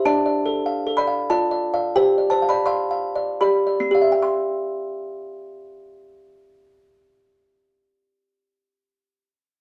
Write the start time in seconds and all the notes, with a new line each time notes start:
0.05 D4 D5 A5
0.26 D5
0.46 A4
0.66 F5
0.87 A4
0.97 D5 B5
1.07 F5
1.30 F4 D5 A5
1.51 D5
1.74 D5 F5
1.96 G4 C5 G5
2.18 D5
2.30 C5 A5
2.42 F5
2.49 D5 B5
2.66 D5 F5 C6
2.91 F5
3.16 D5
3.41 G4 D5 B5
3.67 D5
3.80 C4
3.91 G4 D5 F5
4.02 E5
4.12 G5
4.22 C6